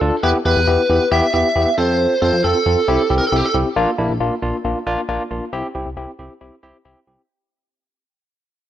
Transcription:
0.01 0.11 D2 loud
0.01 0.15 D4 medium
0.01 0.15 F4 medium
0.01 0.15 A4 loud
0.23 0.33 E2 loud
0.23 0.37 B3 medium
0.23 0.37 E4 medium
0.23 0.37 G4 loud
0.23 0.29 B4 loud
0.45 0.55 E2 loud
0.45 0.59 B3 medium
0.45 0.59 E4 medium
0.45 0.59 G4 medium
0.45 1.08 B4 medium
0.56 0.66 E2 medium
0.68 0.77 E2 loud
0.68 0.81 B3 medium
0.68 0.81 E4 medium
0.68 0.81 G4 medium
0.90 0.99 E2 loud
0.90 1.03 B3 medium
0.90 1.03 E4 medium
0.90 1.03 G4 medium
1.12 1.21 E2 loud
1.12 1.25 B3 medium
1.12 1.25 E4 medium
1.12 1.25 G4 loud
1.12 1.32 E5 loud
1.34 1.43 E2 medium
1.34 1.47 B3 medium
1.34 1.47 E4 medium
1.34 1.47 G4 medium
1.34 1.75 E5 loud
1.56 1.65 E2 loud
1.56 1.69 B3 medium
1.56 1.69 E4 medium
1.56 1.69 G4 medium
1.78 2.07 F2 loud
1.78 2.13 C4 medium
1.78 2.13 F4 medium
1.78 2.13 A4 medium
1.78 2.21 C5 loud
2.22 2.32 F2 loud
2.22 2.35 C4 medium
2.22 2.35 F4 medium
2.22 2.35 A4 medium
2.22 2.44 C5 medium
2.33 2.43 F2 loud
2.44 2.54 F2 loud
2.44 2.57 C4 medium
2.44 2.57 F4 medium
2.44 2.57 A4 medium
2.44 3.14 A4 medium
2.66 2.76 F2 medium
2.66 2.79 C4 medium
2.66 2.79 F4 medium
2.66 2.79 A4 medium
2.88 2.98 C2 loud
2.88 3.01 C4 loud
2.88 3.01 E4 medium
2.88 3.01 G4 loud
3.10 3.20 C2 loud
3.10 3.24 C4 medium
3.10 3.24 E4 medium
3.10 3.24 G4 medium
3.18 3.27 A#4 medium
3.27 3.36 A4 medium
3.32 3.42 C2 loud
3.32 3.46 C4 medium
3.32 3.46 E4 medium
3.32 3.46 G4 medium
3.32 3.45 G4 medium
3.45 3.54 A4 medium
3.54 3.64 C2 loud
3.54 3.68 C4 medium
3.54 3.68 E4 medium
3.54 3.68 G4 medium
3.76 3.86 A#1 loud
3.76 3.90 A#3 loud
3.76 3.90 D4 loud
3.76 3.90 F4 loud
3.98 4.08 A#1 loud
3.98 4.12 A#3 medium
3.98 4.12 D4 medium
3.98 4.12 E4 medium
4.09 4.19 A#1 loud
4.20 4.30 A#1 loud
4.20 4.34 A#3 medium
4.20 4.34 D4 medium
4.20 4.34 F4 loud
4.42 4.52 A#1 medium
4.42 4.56 A#3 medium
4.42 4.56 D4 medium
4.42 4.56 F4 loud
4.65 4.74 A#1 loud
4.65 4.78 A#3 medium
4.65 4.78 D4 medium
4.65 4.78 F4 medium
4.87 4.96 A#1 loud
4.87 5.00 A#3 loud
4.87 5.00 D4 loud
4.87 5.00 F4 loud
5.09 5.18 A#1 loud
5.09 5.22 A#3 loud
5.09 5.22 D4 loud
5.09 5.22 F4 loud
5.31 5.40 A#1 loud
5.31 5.44 A#3 medium
5.31 5.44 D4 medium
5.31 5.44 F4 medium
5.53 5.62 C2 loud
5.53 5.66 C4 loud
5.53 5.66 E4 loud
5.53 5.66 G4 loud
5.75 5.85 C2 loud
5.75 5.88 C4 medium
5.75 5.88 E4 medium
5.75 5.88 G4 medium
5.86 5.96 C2 medium
5.97 6.07 C2 loud
5.97 6.10 C4 medium
5.97 6.10 E4 medium
5.97 6.10 G4 loud
6.19 6.29 C2 medium
6.19 6.32 C4 medium
6.19 6.32 E4 medium
6.19 6.32 G4 medium
6.41 6.51 C2 loud
6.41 6.54 C4 medium
6.41 6.54 E4 medium
6.41 6.54 G4 medium
6.63 6.73 C2 loud
6.63 6.76 C4 loud
6.63 6.76 E4 loud
6.63 6.76 G4 loud
6.85 6.95 C2 loud
6.85 6.99 C4 loud
6.85 6.99 E4 loud
6.85 6.99 G4 loud
7.07 7.17 C2 loud
7.07 7.21 C4 medium
7.07 7.21 E4 medium
7.07 7.21 G4 medium

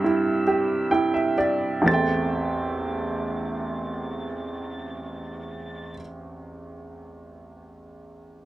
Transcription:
0.00 1.83 G2 soft
0.00 1.34 G3 soft
0.00 0.04 E4 soft
0.00 0.47 G4 soft
0.00 0.89 E6 medium
0.04 0.90 E4 soft
0.47 1.36 G4 soft
0.91 1.84 E4 soft
0.91 1.13 G5 soft
1.14 1.36 E5 soft
1.38 1.85 G4 soft
1.38 1.83 D5 soft
1.82 5.89 A1 soft
1.82 5.92 E2 soft
1.87 5.94 C4 soft
1.87 5.96 A4 soft
1.87 5.95 A6 medium
1.91 5.99 E5 soft
1.91 6.01 G5 soft

